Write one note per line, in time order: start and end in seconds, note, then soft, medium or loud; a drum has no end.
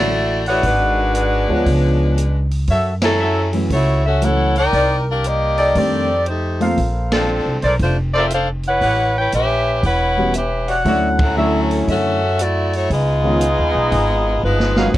0.00 0.60 A1 medium
0.00 0.44 A3 medium
0.00 0.44 E4 medium
0.00 0.44 F#4 medium
0.00 0.44 D5 loud
0.46 0.65 A3 medium
0.46 0.65 E4 medium
0.46 0.66 F#4 medium
0.46 1.12 G#4 medium
0.46 1.12 B4 medium
0.46 0.65 C#5 medium
0.46 1.12 D5 medium
0.46 1.12 F#5 medium
0.46 open hi-hat soft
0.63 1.45 G#1 medium
0.63 1.64 F#4 medium
0.63 kick soft
0.63 open hi-hat soft
0.67 2.49 G#3 medium
0.67 2.49 D4 medium
0.67 2.49 B4 medium
1.15 1.67 G#4 medium
1.15 1.67 B4 medium
1.15 1.67 D5 medium
1.15 1.67 F#5 medium
1.15 closed hi-hat medium
1.48 1.65 D2 medium
1.48 2.14 F3 medium
1.48 2.14 G#3 medium
1.48 2.15 B3 medium
1.48 2.14 D4 medium
1.48 2.15 C#5 medium
1.66 2.65 C#2 medium
1.66 kick soft
1.66 open hi-hat soft
2.18 closed hi-hat medium
2.51 open hi-hat soft
2.68 3.67 F#2 medium
2.68 2.92 F#4 medium
2.68 2.92 A4 medium
2.68 2.92 C#5 medium
2.68 2.92 E5 medium
2.68 kick soft
2.68 open hi-hat soft
3.02 3.50 F#3 medium
3.02 3.51 C#4 medium
3.02 3.51 E4 medium
3.02 3.51 A4 loud
3.02 snare medium
3.02 ride medium
3.20 3.43 F#4 medium
3.20 3.43 A4 medium
3.20 3.43 C#5 medium
3.20 3.43 E5 medium
3.53 3.69 E3 medium
3.53 3.69 F#3 medium
3.53 3.69 A3 medium
3.53 3.69 C#4 medium
3.53 3.69 E4 medium
3.53 open hi-hat soft
3.70 4.69 C#2 medium
3.70 4.03 A3 medium
3.70 4.03 E4 medium
3.70 4.03 F#4 medium
3.70 4.03 C#5 medium
3.70 kick soft
3.70 open hi-hat soft
4.06 4.21 C#4 medium
4.06 4.21 F#4 medium
4.06 4.22 A4 medium
4.06 4.22 E5 medium
4.22 4.52 E3 soft
4.22 4.52 F#3 soft
4.22 4.53 A3 soft
4.22 4.53 C#4 soft
4.22 4.57 E4 medium
4.22 4.53 F#4 medium
4.22 4.57 A4 medium
4.22 4.56 C#5 medium
4.22 4.57 F#5 medium
4.22 closed hi-hat medium
4.55 5.04 D#4 loud
4.55 5.04 A#4 medium
4.55 5.05 D5 medium
4.55 5.04 G5 loud
4.55 open hi-hat soft
4.73 5.71 C2 medium
4.73 4.96 D#4 medium
4.73 4.96 A#4 medium
4.73 4.97 C5 medium
4.73 4.96 D5 medium
4.73 kick soft
4.73 open hi-hat soft
5.10 5.26 D4 medium
5.10 5.26 G4 medium
5.10 5.26 A#4 medium
5.10 5.26 F5 medium
5.24 5.77 A#3 medium
5.24 5.77 G4 medium
5.24 5.77 D5 medium
5.24 5.77 D#5 medium
5.24 closed hi-hat medium
5.58 6.23 D#4 medium
5.58 6.23 G4 medium
5.58 6.23 A4 medium
5.58 6.23 D5 loud
5.58 open hi-hat soft
5.75 6.73 F2 medium
5.75 6.06 D#3 medium
5.75 6.06 G3 medium
5.75 6.06 A3 medium
5.75 6.07 C4 medium
5.75 6.28 C4 medium
5.75 6.06 D4 medium
5.75 6.27 G4 medium
5.75 6.28 A4 medium
5.75 6.28 D5 medium
5.75 kick soft
5.75 open hi-hat soft
6.26 6.67 A3 medium
6.26 6.66 D#4 medium
6.26 6.67 G4 medium
6.26 6.67 C5 medium
6.26 closed hi-hat medium
6.60 6.76 F3 medium
6.60 6.76 A3 medium
6.60 6.76 A#3 medium
6.60 6.76 C4 medium
6.60 6.77 F4 medium
6.60 7.26 A4 medium
6.60 7.26 A#4 medium
6.60 7.26 C5 medium
6.60 7.26 F5 medium
6.60 open hi-hat soft
6.78 7.42 A#1 medium
6.78 kick soft
6.78 open hi-hat soft
7.12 7.59 F3 medium
7.12 7.60 C4 medium
7.12 7.60 D4 medium
7.12 7.60 A4 loud
7.12 snare medium
7.12 ride medium
7.46 7.61 C2 medium
7.62 7.79 B1 medium
7.62 7.74 A4 medium
7.62 7.74 A#4 medium
7.62 7.74 C5 medium
7.62 7.74 D5 loud
7.62 open hi-hat soft
7.79 8.78 F1 medium
7.79 7.96 A3 medium
7.79 7.97 D4 medium
7.79 7.96 F4 medium
7.79 7.96 C5 medium
7.79 kick soft
7.79 open hi-hat soft
8.14 8.31 C4 medium
8.14 8.31 F4 medium
8.14 8.25 A4 medium
8.14 8.32 A4 medium
8.14 8.25 A#4 medium
8.14 8.25 C5 medium
8.14 8.25 D5 loud
8.14 8.31 E5 medium
8.30 8.48 D4 medium
8.30 8.48 A4 medium
8.30 8.48 C5 medium
8.30 8.48 F5 medium
8.30 closed hi-hat medium
8.63 open hi-hat soft
8.67 9.14 E4 medium
8.67 9.14 B4 medium
8.67 9.14 C#5 medium
8.67 9.13 F#5 loud
8.81 9.29 A1 medium
8.81 9.05 G4 medium
8.81 9.05 B4 medium
8.81 9.05 C#5 medium
8.81 9.05 F#5 medium
8.81 kick soft
8.81 open hi-hat soft
9.17 9.34 E4 medium
9.17 9.33 B4 medium
9.17 9.34 C#5 medium
9.17 9.34 G5 medium
9.32 9.80 A#1 medium
9.32 9.81 C#4 medium
9.32 9.81 G4 medium
9.32 9.81 B4 medium
9.32 9.81 E5 loud
9.32 closed hi-hat medium
9.83 10.82 E1 medium
9.83 10.35 E4 medium
9.83 10.35 B4 medium
9.83 10.35 C#5 medium
9.83 10.36 F#5 medium
9.83 kick soft
9.83 open hi-hat soft
10.17 10.33 E3 medium
10.17 10.33 G3 medium
10.17 10.33 B3 medium
10.17 10.34 C#4 medium
10.17 10.34 F#4 medium
10.34 10.75 C#4 medium
10.34 10.75 G4 medium
10.34 10.75 B4 medium
10.34 10.75 E5 medium
10.34 closed hi-hat medium
10.68 10.85 F#4 medium
10.68 10.85 C#5 medium
10.68 10.85 D5 medium
10.68 11.33 F#5 loud
10.68 open hi-hat soft
10.84 11.84 D2 medium
10.84 11.16 D3 medium
10.84 11.16 F#3 medium
10.84 11.16 A3 medium
10.84 11.16 C#4 medium
10.84 11.17 E4 medium
10.84 11.09 F#4 medium
10.84 11.09 C#5 medium
10.84 11.09 D5 medium
10.84 11.09 E5 medium
10.84 kick soft
10.84 open hi-hat soft
11.19 11.86 F#3 medium
11.19 11.86 C#4 medium
11.19 kick medium
11.19 ride medium
11.23 11.86 E4 medium
11.23 11.86 A4 medium
11.37 12.15 D3 medium
11.37 12.15 F#3 medium
11.37 12.16 A3 medium
11.37 12.16 C#4 medium
11.37 12.16 E4 medium
11.37 11.60 F#4 medium
11.37 11.60 C#5 medium
11.37 11.60 D5 medium
11.37 11.60 E5 medium
11.71 open hi-hat soft
11.87 12.86 F#2 medium
11.87 12.40 C#4 medium
11.87 12.40 F#4 medium
11.87 12.40 A4 medium
11.87 12.40 E5 loud
11.87 kick soft
11.87 open hi-hat soft
12.39 12.74 A3 medium
12.39 12.73 E4 medium
12.39 12.74 F#4 medium
12.39 12.75 D5 medium
12.39 closed hi-hat medium
12.73 12.91 A3 medium
12.73 12.91 E4 medium
12.73 12.91 F#4 medium
12.73 12.91 C#5 medium
12.73 open hi-hat soft
12.90 13.54 C#2 medium
12.90 14.40 G#3 medium
12.90 14.40 B3 medium
12.90 14.40 D#4 medium
12.90 14.40 F4 medium
12.90 14.40 G#4 medium
12.90 14.40 D#5 medium
12.90 kick soft
12.90 open hi-hat soft
13.23 13.39 D#3 medium
13.23 13.40 G#3 medium
13.23 13.39 B3 medium
13.23 13.40 C#4 medium
13.23 13.40 F4 medium
13.41 closed hi-hat medium
13.59 13.74 D#2 medium
13.75 13.91 B1 medium
13.92 14.40 G#1 medium
13.92 kick soft
13.92 open hi-hat soft
14.43 14.91 G1 medium
14.43 14.91 F3 medium
14.43 14.90 G#3 medium
14.43 14.91 G#3 medium
14.43 14.90 B3 medium
14.43 14.91 D#4 medium
14.43 14.91 F4 medium
14.43 14.91 B4 medium
14.60 snare medium
14.76 14.93 F#3 medium
14.76 14.93 G#3 medium
14.76 14.93 A#3 medium
14.76 14.93 C#4 medium
14.76 14.89 F#4 medium
14.76 14.93 F#4 medium
14.76 14.89 G#4 medium
14.76 14.89 A#4 medium
14.76 14.89 F5 loud
14.76 snare medium
14.94 14.98 F#1 medium
14.94 14.98 F3 medium
14.94 14.98 C#4 medium
14.94 14.98 F4 medium
14.94 14.98 C#5 medium
14.94 kick medium
14.94 crash medium